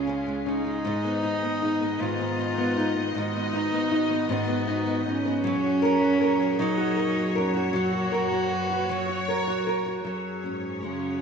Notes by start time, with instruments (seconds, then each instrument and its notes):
Already playing: string section C#2 C#3 G#3 F4 G#4, nylon-string guitar C#3 G#3, cello C#4
0.07 nylon-string guitar C#4
0.26 nylon-string guitar G#3
0.46 nylon-string guitar C#4, cello D#4
0.64 nylon-string guitar G#3
0.82 string section G#2 D#3 B3 D#5, nylon-string guitar G#2
1.04 nylon-string guitar B3
1.23 nylon-string guitar D#4
1.42 nylon-string guitar B3
1.62 nylon-string guitar D#4
1.81 nylon-string guitar B3
2.00 nylon-string guitar G#2, cello F4
2.19 nylon-string guitar B3
2.39 nylon-string guitar D#4
2.58 nylon-string guitar B3
2.77 nylon-string guitar D#4
2.96 nylon-string guitar B3
3.15 nylon-string guitar G#2, cello D#4, string section F#4
3.34 nylon-string guitar B3
3.53 nylon-string guitar D#4
3.72 nylon-string guitar B3
3.91 nylon-string guitar D#4
4.10 nylon-string guitar B3
4.29 nylon-string guitar G#2, cello B3
4.48 nylon-string guitar B3
4.67 nylon-string guitar D#4
4.87 nylon-string guitar B3
5.06 cello C#4, nylon-string guitar D#4
5.25 nylon-string guitar B3
5.44 string section F#2 A#2 F#3 G#4 C#5, nylon-string guitar F#3
5.63 nylon-string guitar F#4
5.82 nylon-string guitar A#4
6.01 nylon-string guitar F#4
6.21 nylon-string guitar A#4
6.40 nylon-string guitar F#4
6.59 nylon-string guitar F#3, cello D#4
6.78 nylon-string guitar F#4
6.97 nylon-string guitar A#4
7.16 nylon-string guitar F#4
7.35 cello C#4, nylon-string guitar A#4
7.54 nylon-string guitar F#4
7.72 nylon-string guitar F#3, string section F#4, cello F#4
7.92 nylon-string guitar F#4
8.12 nylon-string guitar A#4
8.31 nylon-string guitar F#4
8.49 violin section B4
8.70 nylon-string guitar F#4
8.88 nylon-string guitar F#3, violin section C#5
9.09 nylon-string guitar F#4
9.28 nylon-string guitar A#4
9.47 nylon-string guitar F#4
9.67 nylon-string guitar A#4
9.86 nylon-string guitar F#4
10.05 string section F#2 F#3 C#4 G#4 C#5, nylon-string guitar F#3
10.44 cello G#2, nylon-string guitar C#4
10.82 cello C#3, nylon-string guitar G#3